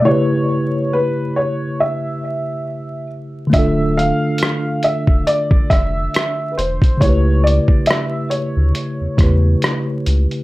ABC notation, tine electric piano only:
X:1
M:4/4
L:1/8
Q:"Swing 16ths" 1/4=69
K:Am
V:1 name="Tine electric piano"
[^C,A,EGB]8 | [D,A,DFA]8 | [^C,A,EGB]4- [C,A,EGB] [C,A,EGB]3 |]